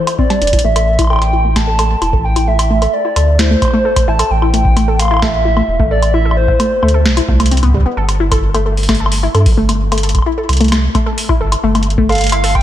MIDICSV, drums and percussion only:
0, 0, Header, 1, 2, 480
1, 0, Start_track
1, 0, Key_signature, 0, "minor"
1, 0, Tempo, 458015
1, 675, Time_signature, 4, 2, 24, 8
1, 13232, End_track
2, 0, Start_track
2, 0, Title_t, "Drums"
2, 76, Note_on_c, 9, 42, 95
2, 76, Note_on_c, 9, 76, 80
2, 181, Note_off_c, 9, 42, 0
2, 181, Note_off_c, 9, 76, 0
2, 195, Note_on_c, 9, 36, 112
2, 300, Note_off_c, 9, 36, 0
2, 316, Note_on_c, 9, 42, 52
2, 316, Note_on_c, 9, 76, 54
2, 421, Note_off_c, 9, 42, 0
2, 421, Note_off_c, 9, 76, 0
2, 436, Note_on_c, 9, 42, 56
2, 496, Note_off_c, 9, 42, 0
2, 496, Note_on_c, 9, 42, 65
2, 555, Note_on_c, 9, 36, 99
2, 556, Note_off_c, 9, 42, 0
2, 556, Note_on_c, 9, 42, 73
2, 616, Note_off_c, 9, 42, 0
2, 616, Note_on_c, 9, 42, 82
2, 660, Note_off_c, 9, 36, 0
2, 720, Note_off_c, 9, 42, 0
2, 795, Note_on_c, 9, 42, 80
2, 795, Note_on_c, 9, 76, 54
2, 900, Note_off_c, 9, 42, 0
2, 900, Note_off_c, 9, 76, 0
2, 1035, Note_on_c, 9, 36, 104
2, 1035, Note_on_c, 9, 42, 92
2, 1035, Note_on_c, 9, 76, 35
2, 1066, Note_off_c, 9, 76, 0
2, 1066, Note_on_c, 9, 76, 41
2, 1095, Note_off_c, 9, 76, 0
2, 1095, Note_on_c, 9, 76, 45
2, 1125, Note_off_c, 9, 76, 0
2, 1125, Note_on_c, 9, 76, 50
2, 1140, Note_off_c, 9, 36, 0
2, 1140, Note_off_c, 9, 42, 0
2, 1155, Note_off_c, 9, 76, 0
2, 1155, Note_on_c, 9, 76, 58
2, 1185, Note_off_c, 9, 76, 0
2, 1185, Note_on_c, 9, 76, 60
2, 1215, Note_off_c, 9, 76, 0
2, 1215, Note_on_c, 9, 76, 66
2, 1245, Note_off_c, 9, 76, 0
2, 1245, Note_on_c, 9, 76, 72
2, 1275, Note_off_c, 9, 76, 0
2, 1275, Note_on_c, 9, 42, 55
2, 1275, Note_on_c, 9, 76, 53
2, 1380, Note_off_c, 9, 42, 0
2, 1380, Note_off_c, 9, 76, 0
2, 1635, Note_on_c, 9, 36, 83
2, 1635, Note_on_c, 9, 38, 120
2, 1635, Note_on_c, 9, 42, 81
2, 1635, Note_on_c, 9, 76, 55
2, 1740, Note_off_c, 9, 36, 0
2, 1740, Note_off_c, 9, 38, 0
2, 1740, Note_off_c, 9, 42, 0
2, 1740, Note_off_c, 9, 76, 0
2, 1875, Note_on_c, 9, 42, 96
2, 1875, Note_on_c, 9, 76, 82
2, 1980, Note_off_c, 9, 42, 0
2, 1980, Note_off_c, 9, 76, 0
2, 2115, Note_on_c, 9, 42, 57
2, 2115, Note_on_c, 9, 76, 55
2, 2220, Note_off_c, 9, 42, 0
2, 2220, Note_off_c, 9, 76, 0
2, 2235, Note_on_c, 9, 36, 111
2, 2339, Note_off_c, 9, 36, 0
2, 2475, Note_on_c, 9, 42, 81
2, 2475, Note_on_c, 9, 76, 56
2, 2580, Note_off_c, 9, 42, 0
2, 2580, Note_off_c, 9, 76, 0
2, 2715, Note_on_c, 9, 42, 95
2, 2715, Note_on_c, 9, 76, 79
2, 2820, Note_off_c, 9, 42, 0
2, 2820, Note_off_c, 9, 76, 0
2, 2955, Note_on_c, 9, 42, 53
2, 2955, Note_on_c, 9, 76, 51
2, 3060, Note_off_c, 9, 42, 0
2, 3060, Note_off_c, 9, 76, 0
2, 3315, Note_on_c, 9, 42, 84
2, 3315, Note_on_c, 9, 76, 52
2, 3420, Note_off_c, 9, 42, 0
2, 3420, Note_off_c, 9, 76, 0
2, 3554, Note_on_c, 9, 38, 123
2, 3554, Note_on_c, 9, 42, 96
2, 3659, Note_off_c, 9, 38, 0
2, 3659, Note_off_c, 9, 42, 0
2, 3794, Note_on_c, 9, 36, 108
2, 3795, Note_on_c, 9, 42, 54
2, 3795, Note_on_c, 9, 76, 50
2, 3825, Note_off_c, 9, 76, 0
2, 3825, Note_on_c, 9, 76, 42
2, 3855, Note_off_c, 9, 76, 0
2, 3855, Note_on_c, 9, 76, 34
2, 3884, Note_off_c, 9, 76, 0
2, 3884, Note_on_c, 9, 76, 29
2, 3899, Note_off_c, 9, 36, 0
2, 3900, Note_off_c, 9, 42, 0
2, 3989, Note_off_c, 9, 76, 0
2, 4154, Note_on_c, 9, 36, 118
2, 4155, Note_on_c, 9, 42, 83
2, 4155, Note_on_c, 9, 76, 53
2, 4259, Note_off_c, 9, 36, 0
2, 4259, Note_off_c, 9, 42, 0
2, 4259, Note_off_c, 9, 76, 0
2, 4395, Note_on_c, 9, 42, 97
2, 4395, Note_on_c, 9, 76, 82
2, 4499, Note_off_c, 9, 42, 0
2, 4499, Note_off_c, 9, 76, 0
2, 4635, Note_on_c, 9, 76, 51
2, 4740, Note_off_c, 9, 76, 0
2, 4755, Note_on_c, 9, 42, 54
2, 4860, Note_off_c, 9, 42, 0
2, 4875, Note_on_c, 9, 36, 110
2, 4979, Note_off_c, 9, 36, 0
2, 4995, Note_on_c, 9, 42, 78
2, 4995, Note_on_c, 9, 76, 49
2, 5100, Note_off_c, 9, 42, 0
2, 5100, Note_off_c, 9, 76, 0
2, 5235, Note_on_c, 9, 42, 95
2, 5235, Note_on_c, 9, 76, 35
2, 5265, Note_off_c, 9, 76, 0
2, 5265, Note_on_c, 9, 76, 39
2, 5295, Note_off_c, 9, 76, 0
2, 5295, Note_on_c, 9, 76, 44
2, 5325, Note_off_c, 9, 76, 0
2, 5325, Note_on_c, 9, 76, 48
2, 5340, Note_off_c, 9, 42, 0
2, 5355, Note_off_c, 9, 76, 0
2, 5355, Note_on_c, 9, 76, 55
2, 5385, Note_off_c, 9, 76, 0
2, 5385, Note_on_c, 9, 76, 60
2, 5415, Note_off_c, 9, 76, 0
2, 5415, Note_on_c, 9, 76, 65
2, 5444, Note_off_c, 9, 76, 0
2, 5444, Note_on_c, 9, 76, 68
2, 5475, Note_on_c, 9, 36, 87
2, 5475, Note_on_c, 9, 38, 124
2, 5475, Note_on_c, 9, 42, 52
2, 5549, Note_off_c, 9, 76, 0
2, 5579, Note_off_c, 9, 36, 0
2, 5580, Note_off_c, 9, 38, 0
2, 5580, Note_off_c, 9, 42, 0
2, 5834, Note_on_c, 9, 76, 51
2, 5939, Note_off_c, 9, 76, 0
2, 6075, Note_on_c, 9, 36, 121
2, 6180, Note_off_c, 9, 36, 0
2, 6315, Note_on_c, 9, 42, 53
2, 6315, Note_on_c, 9, 76, 50
2, 6419, Note_off_c, 9, 42, 0
2, 6419, Note_off_c, 9, 76, 0
2, 6615, Note_on_c, 9, 76, 50
2, 6720, Note_off_c, 9, 76, 0
2, 6795, Note_on_c, 9, 36, 105
2, 6900, Note_off_c, 9, 36, 0
2, 6915, Note_on_c, 9, 42, 90
2, 6915, Note_on_c, 9, 76, 74
2, 7019, Note_off_c, 9, 42, 0
2, 7019, Note_off_c, 9, 76, 0
2, 7155, Note_on_c, 9, 76, 51
2, 7215, Note_on_c, 9, 42, 52
2, 7260, Note_off_c, 9, 76, 0
2, 7320, Note_off_c, 9, 42, 0
2, 7394, Note_on_c, 9, 38, 123
2, 7499, Note_off_c, 9, 38, 0
2, 7514, Note_on_c, 9, 42, 80
2, 7514, Note_on_c, 9, 76, 50
2, 7619, Note_off_c, 9, 42, 0
2, 7619, Note_off_c, 9, 76, 0
2, 7635, Note_on_c, 9, 36, 109
2, 7740, Note_off_c, 9, 36, 0
2, 7755, Note_on_c, 9, 42, 88
2, 7755, Note_on_c, 9, 76, 75
2, 7815, Note_off_c, 9, 42, 0
2, 7815, Note_on_c, 9, 42, 72
2, 7859, Note_off_c, 9, 76, 0
2, 7875, Note_off_c, 9, 42, 0
2, 7875, Note_on_c, 9, 42, 59
2, 7935, Note_off_c, 9, 42, 0
2, 7935, Note_on_c, 9, 42, 48
2, 7995, Note_off_c, 9, 42, 0
2, 7995, Note_on_c, 9, 36, 52
2, 7995, Note_on_c, 9, 42, 52
2, 7995, Note_on_c, 9, 76, 49
2, 8025, Note_off_c, 9, 36, 0
2, 8025, Note_on_c, 9, 36, 60
2, 8055, Note_off_c, 9, 36, 0
2, 8055, Note_on_c, 9, 36, 68
2, 8085, Note_off_c, 9, 36, 0
2, 8085, Note_on_c, 9, 36, 73
2, 8100, Note_off_c, 9, 42, 0
2, 8100, Note_off_c, 9, 76, 0
2, 8115, Note_off_c, 9, 36, 0
2, 8115, Note_on_c, 9, 36, 87
2, 8145, Note_off_c, 9, 36, 0
2, 8145, Note_on_c, 9, 36, 96
2, 8175, Note_off_c, 9, 36, 0
2, 8175, Note_on_c, 9, 36, 99
2, 8205, Note_off_c, 9, 36, 0
2, 8205, Note_on_c, 9, 36, 106
2, 8310, Note_off_c, 9, 36, 0
2, 8475, Note_on_c, 9, 42, 74
2, 8475, Note_on_c, 9, 76, 49
2, 8579, Note_off_c, 9, 42, 0
2, 8579, Note_off_c, 9, 76, 0
2, 8715, Note_on_c, 9, 36, 104
2, 8715, Note_on_c, 9, 42, 87
2, 8715, Note_on_c, 9, 76, 74
2, 8820, Note_off_c, 9, 36, 0
2, 8820, Note_off_c, 9, 42, 0
2, 8820, Note_off_c, 9, 76, 0
2, 8955, Note_on_c, 9, 42, 50
2, 8955, Note_on_c, 9, 76, 51
2, 9060, Note_off_c, 9, 42, 0
2, 9060, Note_off_c, 9, 76, 0
2, 9195, Note_on_c, 9, 46, 29
2, 9255, Note_off_c, 9, 46, 0
2, 9255, Note_on_c, 9, 46, 37
2, 9315, Note_off_c, 9, 46, 0
2, 9315, Note_on_c, 9, 36, 83
2, 9315, Note_on_c, 9, 38, 118
2, 9315, Note_on_c, 9, 42, 75
2, 9315, Note_on_c, 9, 46, 43
2, 9315, Note_on_c, 9, 76, 51
2, 9375, Note_off_c, 9, 46, 0
2, 9375, Note_on_c, 9, 46, 51
2, 9420, Note_off_c, 9, 36, 0
2, 9420, Note_off_c, 9, 38, 0
2, 9420, Note_off_c, 9, 42, 0
2, 9420, Note_off_c, 9, 76, 0
2, 9480, Note_off_c, 9, 46, 0
2, 9495, Note_on_c, 9, 76, 79
2, 9555, Note_on_c, 9, 46, 81
2, 9600, Note_off_c, 9, 76, 0
2, 9660, Note_off_c, 9, 46, 0
2, 9795, Note_on_c, 9, 42, 51
2, 9795, Note_on_c, 9, 76, 52
2, 9900, Note_off_c, 9, 42, 0
2, 9900, Note_off_c, 9, 76, 0
2, 9915, Note_on_c, 9, 36, 115
2, 9915, Note_on_c, 9, 46, 61
2, 10020, Note_off_c, 9, 36, 0
2, 10020, Note_off_c, 9, 46, 0
2, 10155, Note_on_c, 9, 42, 78
2, 10155, Note_on_c, 9, 76, 52
2, 10260, Note_off_c, 9, 42, 0
2, 10260, Note_off_c, 9, 76, 0
2, 10395, Note_on_c, 9, 42, 83
2, 10395, Note_on_c, 9, 76, 77
2, 10455, Note_off_c, 9, 42, 0
2, 10455, Note_on_c, 9, 42, 67
2, 10500, Note_off_c, 9, 76, 0
2, 10515, Note_off_c, 9, 42, 0
2, 10515, Note_on_c, 9, 42, 58
2, 10575, Note_off_c, 9, 42, 0
2, 10575, Note_on_c, 9, 42, 46
2, 10634, Note_off_c, 9, 42, 0
2, 10634, Note_on_c, 9, 42, 49
2, 10634, Note_on_c, 9, 76, 23
2, 10635, Note_on_c, 9, 36, 98
2, 10674, Note_off_c, 9, 76, 0
2, 10674, Note_on_c, 9, 76, 32
2, 10715, Note_off_c, 9, 76, 0
2, 10715, Note_on_c, 9, 76, 40
2, 10739, Note_off_c, 9, 36, 0
2, 10739, Note_off_c, 9, 42, 0
2, 10820, Note_off_c, 9, 76, 0
2, 10995, Note_on_c, 9, 42, 71
2, 10995, Note_on_c, 9, 76, 52
2, 11035, Note_off_c, 9, 42, 0
2, 11035, Note_on_c, 9, 42, 58
2, 11075, Note_off_c, 9, 42, 0
2, 11075, Note_on_c, 9, 42, 49
2, 11100, Note_off_c, 9, 76, 0
2, 11115, Note_off_c, 9, 42, 0
2, 11115, Note_on_c, 9, 42, 42
2, 11155, Note_off_c, 9, 42, 0
2, 11155, Note_on_c, 9, 42, 33
2, 11195, Note_off_c, 9, 42, 0
2, 11195, Note_on_c, 9, 42, 28
2, 11235, Note_off_c, 9, 42, 0
2, 11235, Note_on_c, 9, 38, 114
2, 11235, Note_on_c, 9, 42, 89
2, 11235, Note_on_c, 9, 76, 78
2, 11340, Note_off_c, 9, 38, 0
2, 11340, Note_off_c, 9, 42, 0
2, 11340, Note_off_c, 9, 76, 0
2, 11474, Note_on_c, 9, 36, 102
2, 11475, Note_on_c, 9, 42, 51
2, 11475, Note_on_c, 9, 76, 55
2, 11579, Note_off_c, 9, 36, 0
2, 11579, Note_off_c, 9, 42, 0
2, 11579, Note_off_c, 9, 76, 0
2, 11714, Note_on_c, 9, 46, 83
2, 11819, Note_off_c, 9, 46, 0
2, 11834, Note_on_c, 9, 36, 110
2, 11835, Note_on_c, 9, 76, 52
2, 11939, Note_off_c, 9, 36, 0
2, 11939, Note_off_c, 9, 76, 0
2, 12074, Note_on_c, 9, 42, 88
2, 12074, Note_on_c, 9, 76, 78
2, 12179, Note_off_c, 9, 42, 0
2, 12179, Note_off_c, 9, 76, 0
2, 12314, Note_on_c, 9, 42, 48
2, 12314, Note_on_c, 9, 76, 53
2, 12394, Note_off_c, 9, 42, 0
2, 12394, Note_on_c, 9, 42, 40
2, 12419, Note_off_c, 9, 76, 0
2, 12475, Note_off_c, 9, 42, 0
2, 12475, Note_on_c, 9, 42, 34
2, 12554, Note_on_c, 9, 36, 102
2, 12579, Note_off_c, 9, 42, 0
2, 12659, Note_off_c, 9, 36, 0
2, 12674, Note_on_c, 9, 42, 35
2, 12674, Note_on_c, 9, 76, 54
2, 12705, Note_off_c, 9, 42, 0
2, 12705, Note_on_c, 9, 42, 39
2, 12735, Note_off_c, 9, 42, 0
2, 12735, Note_on_c, 9, 42, 45
2, 12765, Note_off_c, 9, 42, 0
2, 12765, Note_on_c, 9, 42, 48
2, 12779, Note_off_c, 9, 76, 0
2, 12795, Note_off_c, 9, 42, 0
2, 12795, Note_on_c, 9, 42, 55
2, 12825, Note_off_c, 9, 42, 0
2, 12825, Note_on_c, 9, 42, 59
2, 12855, Note_off_c, 9, 42, 0
2, 12855, Note_on_c, 9, 42, 64
2, 12885, Note_off_c, 9, 42, 0
2, 12885, Note_on_c, 9, 42, 70
2, 12914, Note_off_c, 9, 42, 0
2, 12914, Note_on_c, 9, 42, 89
2, 12914, Note_on_c, 9, 76, 81
2, 13019, Note_off_c, 9, 42, 0
2, 13019, Note_off_c, 9, 76, 0
2, 13034, Note_on_c, 9, 46, 66
2, 13139, Note_off_c, 9, 46, 0
2, 13154, Note_on_c, 9, 36, 81
2, 13155, Note_on_c, 9, 42, 24
2, 13155, Note_on_c, 9, 76, 54
2, 13232, Note_off_c, 9, 36, 0
2, 13232, Note_off_c, 9, 42, 0
2, 13232, Note_off_c, 9, 76, 0
2, 13232, End_track
0, 0, End_of_file